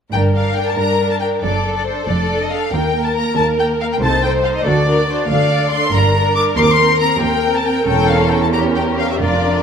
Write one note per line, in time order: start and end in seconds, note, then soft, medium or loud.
0.12 0.53 G1 soft
0.12 0.67 G2 soft
0.12 0.33 D4 soft
0.12 1.39 A#4 soft
0.12 0.33 A#4 soft
0.12 0.21 G5 medium
0.35 0.56 D4 soft
0.35 0.55 A#4 soft
0.35 0.56 F5 soft
0.57 0.78 D4 soft
0.57 0.77 A#4 soft
0.57 0.67 G5 soft
0.68 0.79 A5 soft
0.78 1.33 G2 soft
0.78 0.98 D4 soft
0.78 0.99 A#4 soft
0.78 1.10 A#5 soft
1.00 1.21 D4 soft
1.00 1.21 A#4 soft
1.11 1.15 A5 soft
1.21 1.42 D4 soft
1.21 1.43 A#4 soft
1.21 1.29 G5 soft
1.42 1.84 F#1 soft
1.42 1.97 F#2 soft
1.42 1.64 D4 soft
1.42 2.07 A4 soft
1.42 1.64 A4 soft
1.42 1.75 D5 soft
1.65 1.86 D4 soft
1.65 1.85 A4 soft
1.76 1.86 D5 soft
1.86 2.07 D4 soft
1.86 2.08 A4 soft
1.86 2.07 C5 soft
2.07 2.48 F1 soft
2.07 2.63 F2 soft
2.07 2.30 D4 soft
2.07 2.71 A4 soft
2.07 2.30 A4 soft
2.07 2.40 D5 soft
2.31 2.51 D4 soft
2.31 2.51 A4 soft
2.41 2.51 D#5 soft
2.51 2.73 D4 soft
2.51 2.73 A4 soft
2.51 2.73 F5 soft
2.72 3.13 D#2 soft
2.72 3.27 D#2 soft
2.72 2.94 A#3 soft
2.72 3.99 A#4 soft
2.72 2.94 A#4 soft
2.72 3.05 G5 soft
2.95 3.15 A#3 soft
2.95 3.15 A#4 soft
3.06 3.16 A5 soft
3.16 3.37 A#3 soft
3.16 3.36 A#4 soft
3.16 3.37 A#5 medium
3.37 3.91 D#2 soft
3.37 3.58 A#3 soft
3.37 3.58 A#4 soft
3.37 3.45 A5 medium
3.59 3.79 A#3 soft
3.59 3.79 A#4 soft
3.59 3.67 G5 medium
3.80 4.01 A#3 soft
3.80 4.01 A#4 soft
3.80 3.85 F5 medium
3.92 3.96 G5 soft
4.01 4.41 C2 soft
4.01 4.55 C2 soft
4.01 4.22 D#4 soft
4.01 4.22 A4 soft
4.01 4.64 C5 medium
4.01 4.23 A5 medium
4.23 4.43 D#4 soft
4.23 4.43 A4 soft
4.23 4.31 G5 soft
4.44 4.65 D#4 soft
4.44 4.65 A4 soft
4.44 4.48 F5 soft
4.56 4.66 D#5 soft
4.65 5.05 D2 medium
4.65 5.19 D2 soft
4.65 4.86 D4 soft
4.65 4.86 F#4 soft
4.65 4.86 A4 soft
4.65 5.28 D5 medium
4.87 5.07 D4 soft
4.87 5.07 F#4 soft
4.87 5.08 A#4 soft
5.09 5.28 D4 soft
5.09 5.29 F#4 soft
5.09 5.17 C5 soft
5.29 5.83 D2 soft
5.29 5.69 D2 medium
5.29 5.50 D4 soft
5.29 5.50 A4 soft
5.29 5.92 D5 medium
5.29 5.71 F5 medium
5.51 5.71 D4 soft
5.51 5.71 A4 soft
5.72 5.92 D4 soft
5.72 5.93 A4 soft
5.72 5.93 C6 medium
5.93 6.33 G1 medium
5.93 6.47 G2 medium
5.93 6.14 D4 soft
5.93 7.83 A#4 medium
5.93 6.14 A#4 soft
5.93 6.36 A#5 medium
6.15 6.35 D4 soft
6.15 6.35 A#4 soft
6.35 6.57 D4 soft
6.35 6.56 A#4 soft
6.35 6.43 D6 medium
6.57 7.11 D#2 medium
6.57 6.97 D#2 medium
6.57 6.78 C4 soft
6.57 6.79 A#4 soft
6.57 6.60 C6 medium
6.63 6.71 D6 medium
6.71 7.00 C6 medium
6.80 7.00 C4 soft
6.80 7.00 A#4 soft
7.00 7.21 C4 soft
7.00 7.21 A#4 soft
7.00 7.21 A#5 medium
7.21 7.77 D#2 medium
7.21 7.42 C4 soft
7.21 7.42 A#4 soft
7.21 7.53 G5 medium
7.43 7.64 C4 soft
7.43 7.65 A#4 soft
7.56 7.66 A5 medium
7.65 7.87 C4 soft
7.65 7.86 A#4 soft
7.65 7.86 G5 medium
7.87 8.28 E1 soft
7.87 9.16 E2 soft
7.87 8.49 C#4 soft
7.87 8.52 A4 medium
7.87 8.49 A#4 soft
7.87 8.09 G5 medium
8.09 8.31 F5 medium
8.31 8.42 G5 medium
8.43 8.47 A5 soft
8.53 9.19 C#4 soft
8.53 9.20 G4 soft
8.53 9.19 A#4 soft
8.53 8.61 A#5 medium
8.75 8.83 G5 soft
8.98 9.09 F5 medium
9.11 9.15 E5 soft
9.20 9.63 F1 soft
9.20 9.63 F2 soft
9.20 9.63 D4 soft
9.20 9.63 F4 soft
9.20 9.63 A#4 soft
9.20 9.63 D5 soft